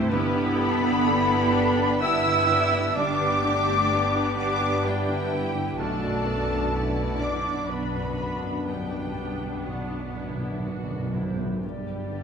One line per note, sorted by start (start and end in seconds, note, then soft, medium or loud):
0.00 0.12 G2 medium
0.00 0.16 C3 loud
0.00 0.74 E3 medium
0.00 3.55 G3 medium
0.00 0.11 A3 loud
0.00 0.14 C4 medium
0.00 0.15 C4 medium
0.00 0.14 E4 medium
0.00 0.15 E4 medium
0.00 1.04 E4 loud
0.00 0.12 C5 loud
0.00 0.14 C5 medium
0.00 0.15 C5 medium
0.00 0.15 E5 medium
0.00 0.15 C6 loud
0.10 2.92 G1 loud
0.10 2.94 G2 loud
0.10 2.92 G2 loud
0.10 2.92 B3 loud
0.10 1.98 B3 loud
0.10 1.05 B3 loud
0.10 2.92 D4 loud
0.10 1.03 G4 loud
0.10 0.58 B4 loud
0.10 2.03 B4 loud
0.10 1.98 B5 loud
0.36 0.73 D3 medium
0.57 0.96 B3 medium
0.57 1.04 A4 loud
0.82 1.20 D4 medium
0.82 1.28 D5 medium
1.05 1.54 E4 loud
1.05 2.01 G4 loud
1.05 2.02 A4 loud
1.05 1.45 D5 medium
1.05 4.95 B5 medium
1.29 1.69 D4 medium
1.29 2.00 D5 medium
1.53 2.02 D4 loud
1.53 1.93 D5 medium
1.53 4.36 D6 medium
1.79 2.17 D4 medium
2.01 2.96 B3 medium
2.01 2.40 B3 medium
2.01 2.49 E4 loud
2.01 2.95 E4 loud
2.01 2.95 G4 medium
2.01 3.66 D5 medium
2.01 2.96 E5 loud
2.01 2.96 E6 loud
2.26 2.64 D3 medium
2.49 3.18 D3 medium
2.49 2.87 B3 medium
2.49 2.96 D4 medium
2.73 3.11 D3 medium
2.95 5.75 G1 loud
2.95 5.82 G2 medium
2.95 5.75 G2 medium
2.95 3.43 B3 medium
2.95 5.61 B3 medium
2.95 4.37 D4 loud
2.95 5.61 D4 medium
2.95 4.81 G4 loud
2.95 3.89 G4 medium
2.95 4.35 D5 loud
2.95 4.37 D6 loud
2.95 4.34 D6 loud
3.19 5.31 D3 medium
3.19 3.58 B3 medium
3.43 3.82 D3 medium
3.43 3.90 A3 medium
3.43 6.25 D4 medium
3.67 4.06 D4 medium
3.67 4.12 D5 medium
3.90 4.36 B3 medium
3.90 5.75 G4 medium
3.90 4.85 B4 medium
3.90 4.29 D5 medium
4.13 4.52 D4 medium
4.13 4.83 D5 medium
4.37 4.83 B3 loud
4.37 4.84 D4 loud
4.37 4.86 D5 loud
4.37 4.76 D5 medium
4.37 7.21 D6 medium
4.37 4.83 D6 loud
4.37 4.84 D6 loud
4.61 4.99 D4 medium
4.84 5.78 G3 medium
4.84 5.22 B3 medium
4.84 5.31 D4 medium
4.84 5.80 E4 medium
4.84 5.81 G4 loud
4.84 5.78 B4 medium
4.84 6.48 D5 medium
4.84 5.78 G5 loud
4.84 5.79 G5 loud
5.09 5.46 D3 medium
5.32 5.83 D3 medium
5.32 5.70 B3 medium
5.32 5.79 E4 medium
5.55 5.79 D3 medium
5.78 8.66 B1 medium
5.78 8.64 B1 medium
5.78 5.85 B2 soft
5.78 8.66 B2 medium
5.78 7.18 A3 medium
5.78 7.65 B3 medium
5.78 7.65 D4 medium
5.78 6.24 D4 medium
5.78 6.73 D4 medium
5.78 6.71 F#4 medium
5.78 7.22 A4 loud
5.78 6.73 D5 medium
5.78 6.91 A5 loud
5.78 7.18 A5 loud
5.86 5.92 B2 soft
5.93 5.99 B2 soft
6.03 6.40 F#2 medium
6.15 6.21 B2 soft
6.22 6.28 B2 soft
6.22 6.63 B3 medium
6.22 6.72 D4 medium
6.26 6.36 B2 soft
6.26 9.16 D4 medium
6.37 6.44 B2 soft
6.45 6.51 B2 soft
6.45 6.95 D5 medium
6.50 6.59 B2 soft
6.50 6.87 D4 medium
6.60 6.66 B2 soft
6.67 6.73 B2 soft
6.73 6.81 B2 soft
6.73 7.69 E4 medium
6.73 7.67 F#4 medium
6.73 7.11 D5 medium
6.73 7.68 D5 medium
6.82 6.88 B2 soft
6.90 6.96 B2 soft
6.97 7.35 D4 medium
6.97 7.68 D5 medium
7.12 7.19 B2 medium
7.20 7.27 B2 soft
7.20 7.68 D4 medium
7.20 7.69 D4 medium
7.20 7.71 D5 medium
7.20 7.59 D5 medium
7.20 7.68 D6 medium
7.20 7.69 D6 loud
7.28 7.35 B2 medium
7.36 7.42 B2 medium
7.43 7.49 B2 medium
7.43 7.84 D4 medium
7.50 7.57 B2 medium
7.58 7.64 B2 medium
7.66 7.73 B2 medium
7.66 8.08 B3 soft
7.66 8.67 B3 medium
7.66 8.17 D4 medium
7.66 8.65 F#4 medium
7.66 8.65 B4 medium
7.70 9.63 B3 medium
7.70 9.63 D4 medium
7.70 8.39 B4 medium
7.70 9.41 D5 medium
7.70 8.68 B5 medium
7.74 7.80 B2 medium
7.81 7.87 B2 medium
7.88 7.95 B2 medium
7.94 8.33 F#2 soft
7.94 8.04 B2 medium
8.13 8.19 B2 medium
8.18 8.27 B2 medium
8.18 11.67 D3 soft
8.18 8.57 B3 soft
8.18 8.67 D4 medium
8.28 8.34 B2 medium
8.36 8.42 B2 medium
8.42 8.82 F#2 soft
8.42 8.50 B2 medium
8.51 8.58 B2 medium
8.59 8.66 B2 medium
8.66 11.38 B1 medium
8.66 11.59 B1 medium
8.66 8.74 B2 medium
8.66 11.67 B2 medium
8.66 9.66 G3 medium
8.66 11.43 B3 medium
8.66 9.56 D4 medium
8.66 11.39 D4 medium
8.66 9.67 G4 medium
8.66 9.54 B4 medium
8.66 9.66 G5 medium
8.66 9.64 G5 medium
8.75 8.82 B2 medium
8.83 8.90 B2 medium
8.91 8.97 B2 medium
8.91 9.32 B3 soft
8.99 9.05 B2 medium
9.07 9.13 B2 medium
9.14 9.20 B2 medium
9.14 12.11 D4 soft
9.22 9.28 B2 medium
9.29 9.36 B2 medium
9.37 9.43 B2 medium
9.37 9.81 D4 soft
9.42 9.51 B2 medium
9.42 9.90 D5 soft
9.52 9.59 B2 medium
9.60 9.67 B2 medium
9.66 9.74 B2 medium
9.66 10.63 F#3 soft
9.66 11.27 B3 medium
9.66 10.12 D4 medium
9.66 11.27 D4 medium
9.66 10.65 F#4 medium
9.66 10.06 D5 soft
9.66 10.64 F#5 medium
9.66 10.65 F#5 medium
9.75 9.83 B2 medium
9.84 9.91 B2 medium
9.91 9.98 B2 medium
9.91 10.31 D4 soft
9.91 10.64 D5 soft
9.99 10.05 B2 medium
10.06 10.14 B2 medium
10.15 10.21 B2 medium
10.15 10.64 E4 medium
10.15 10.55 D5 soft
10.15 12.23 D6 medium
10.22 10.29 B2 medium
10.30 10.36 B2 medium
10.37 10.44 B2 medium
10.37 10.80 D4 soft
10.45 10.51 B2 medium
10.52 10.59 B2 medium
10.60 10.67 B2 medium
10.65 10.74 B2 medium
10.65 11.05 B3 soft
10.65 11.14 F#4 medium
10.65 12.23 D5 soft
10.76 10.82 B2 medium
10.83 10.89 B2 medium
10.90 11.29 F#2 soft
10.90 10.97 B2 medium
10.98 11.05 B2 loud
11.07 11.13 B2 medium
11.13 11.21 B2 medium
11.13 11.54 B2 soft
11.13 11.67 F#3 soft
11.13 11.63 E4 medium
11.13 11.60 C5 medium
11.22 11.29 B2 medium
11.30 11.37 B2 medium
11.38 11.64 F#2 soft
11.38 11.45 B2 medium
11.38 11.87 B3 soft
11.46 11.53 B2 loud
11.54 11.61 B2 medium
11.62 12.23 G1 medium
11.62 12.23 G2 medium
11.62 12.23 G3 medium
11.62 12.23 G4 medium
11.62 12.23 B4 medium
11.62 12.23 D5 medium
11.88 12.23 B3 soft
12.12 12.23 D3 soft
12.12 12.23 D4 soft